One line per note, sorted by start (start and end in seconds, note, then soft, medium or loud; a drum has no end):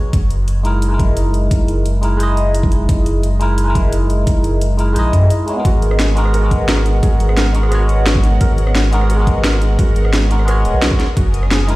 0.13 1.50 F#1 loud
0.13 kick loud
0.13 closed hi-hat medium
0.30 closed hi-hat medium
0.48 closed hi-hat medium
0.63 0.87 G#3 medium
0.63 0.89 D#4 medium
0.63 0.89 E4 medium
0.63 0.90 A#4 loud
0.63 closed hi-hat medium
0.82 closed hi-hat medium
0.88 1.99 G#3 medium
0.88 2.00 D#4 medium
0.88 2.01 E4 medium
0.94 2.02 A#4 medium
0.99 kick loud
0.99 closed hi-hat medium
1.17 closed hi-hat medium
1.34 closed hi-hat medium
1.51 1.67 F#1 loud
1.51 kick loud
1.51 closed hi-hat medium
1.68 2.88 F#1 medium
1.68 closed hi-hat medium
1.86 closed hi-hat medium
2.01 2.16 G#3 medium
2.01 2.18 D#4 medium
2.01 2.18 E4 medium
2.01 2.19 A#4 medium
2.01 closed hi-hat medium
2.17 3.37 G#3 medium
2.17 3.38 D#4 medium
2.17 3.39 E4 medium
2.17 closed hi-hat medium
2.23 3.40 D#5 loud
2.37 closed hi-hat medium
2.54 closed hi-hat medium
2.63 kick loud
2.72 closed hi-hat medium
2.89 4.26 F#1 loud
2.89 kick loud
2.89 closed hi-hat medium
3.06 closed hi-hat medium
3.23 closed hi-hat medium
3.39 3.63 G#3 medium
3.39 3.65 D#4 medium
3.39 3.65 E4 medium
3.39 3.66 A#4 loud
3.39 closed hi-hat medium
3.58 closed hi-hat medium
3.64 4.75 G#3 medium
3.64 4.76 D#4 medium
3.64 4.77 E4 medium
3.70 4.78 A#4 medium
3.75 kick loud
3.75 closed hi-hat medium
3.93 closed hi-hat medium
4.10 closed hi-hat medium
4.27 4.43 F#1 loud
4.27 kick loud
4.27 closed hi-hat medium
4.44 4.95 F#1 medium
4.44 closed hi-hat medium
4.61 closed hi-hat medium
4.77 4.92 G#3 medium
4.77 4.94 D#4 medium
4.77 4.94 E4 medium
4.77 4.95 A#4 medium
4.77 closed hi-hat medium
4.93 5.12 A#1 medium
4.93 5.45 G#3 medium
4.93 5.46 D#4 medium
4.93 5.47 E4 medium
4.93 closed hi-hat medium
4.99 5.48 D#5 loud
5.13 5.29 F#2 loud
5.13 kick medium
5.13 closed hi-hat medium
5.30 closed hi-hat loud
5.46 5.52 G#3 medium
5.46 5.55 D#4 medium
5.46 5.55 E4 medium
5.46 5.56 C#5 medium
5.46 closed hi-hat medium
5.54 6.13 G#3 medium
5.54 6.14 B3 medium
5.54 6.15 F#4 medium
5.60 6.16 A#4 loud
5.65 7.02 G#1 loud
5.65 5.81 F#4 medium
5.65 11.76 A#4 medium
5.65 10.96 F#5 medium
5.65 kick loud
5.65 closed hi-hat medium
5.82 closed hi-hat medium
5.91 cross-stick soft
5.99 6.15 G#4 medium
5.99 snare loud
5.99 closed hi-hat medium
6.15 6.39 G#3 medium
6.15 6.40 B3 medium
6.15 6.41 F#4 medium
6.15 6.41 A#4 loud
6.15 closed hi-hat medium
6.26 cross-stick soft
6.34 6.44 A#4 loud
6.34 closed hi-hat medium
6.40 7.51 G#3 medium
6.40 7.52 B3 medium
6.40 7.53 F#4 medium
6.46 7.54 A#4 medium
6.51 kick loud
6.51 closed hi-hat medium
6.68 6.84 F#4 medium
6.68 snare loud
6.68 closed hi-hat medium
6.77 cross-stick soft
6.86 closed hi-hat medium
7.03 7.18 G#1 loud
7.03 7.18 G#4 medium
7.03 kick loud
7.03 closed hi-hat medium
7.20 8.39 G#1 medium
7.20 closed hi-hat medium
7.29 cross-stick soft
7.37 7.47 A#4 loud
7.37 snare loud
7.37 closed hi-hat medium
7.46 cross-stick soft
7.53 7.68 G#3 medium
7.53 7.70 B3 medium
7.53 7.70 F#4 medium
7.53 7.71 A#4 medium
7.53 closed hi-hat medium
7.63 cross-stick soft
7.69 8.89 G#3 medium
7.69 8.90 B3 medium
7.69 7.87 F#4 medium
7.69 cross-stick soft
7.69 closed hi-hat medium
7.73 8.91 F#4 medium
7.73 8.92 C#5 loud
7.89 closed hi-hat medium
8.06 8.22 G#4 medium
8.06 snare loud
8.06 closed hi-hat medium
8.15 kick loud
8.23 closed hi-hat medium
8.41 9.77 G#1 loud
8.41 8.50 A#4 loud
8.41 kick loud
8.41 closed hi-hat medium
8.58 closed hi-hat medium
8.67 cross-stick soft
8.75 8.91 F#4 medium
8.75 snare loud
8.75 closed hi-hat medium
8.91 9.14 G#3 loud
8.91 9.16 B3 medium
8.91 9.17 F#4 medium
8.91 9.17 A#4 loud
8.91 closed hi-hat medium
9.01 cross-stick soft
9.10 9.25 G#4 medium
9.10 closed hi-hat medium
9.16 10.27 G#3 medium
9.16 10.28 B3 medium
9.16 10.29 F#4 medium
9.22 10.30 A#4 medium
9.27 kick loud
9.27 closed hi-hat medium
9.44 9.54 A#4 loud
9.44 snare loud
9.44 closed hi-hat medium
9.53 cross-stick soft
9.62 closed hi-hat medium
9.79 9.94 G#1 loud
9.79 9.94 F#4 medium
9.79 kick loud
9.79 closed hi-hat medium
9.96 10.64 G#1 medium
9.96 closed hi-hat medium
10.05 cross-stick soft
10.13 10.29 G#4 medium
10.13 snare loud
10.13 closed hi-hat medium
10.22 cross-stick soft
10.29 10.44 G#3 medium
10.29 10.46 B3 medium
10.29 10.46 F#4 medium
10.29 10.47 A#4 medium
10.29 closed hi-hat medium
10.39 cross-stick soft
10.45 10.97 G#3 medium
10.45 10.98 B3 medium
10.45 10.57 A#4 loud
10.45 cross-stick soft
10.45 closed hi-hat medium
10.49 10.99 F#4 medium
10.49 11.00 C#5 loud
10.65 10.73 D#1 medium
10.65 closed hi-hat medium
10.74 10.98 B1 medium
10.82 10.98 F#4 medium
10.82 snare loud
10.82 closed hi-hat medium
10.91 kick loud
11.00 11.76 G#5 medium
11.00 11.76 D#6 medium
11.00 snare soft
11.00 closed hi-hat medium
11.17 11.76 F#1 loud
11.17 11.32 F#4 medium
11.17 kick loud
11.17 closed hi-hat medium
11.34 closed hi-hat medium
11.43 cross-stick soft
11.51 11.67 G#4 medium
11.51 snare loud
11.51 closed hi-hat medium
11.67 11.76 G#3 medium
11.67 11.76 D#4 medium
11.67 11.76 E4 medium
11.67 11.76 A#4 loud
11.67 closed hi-hat medium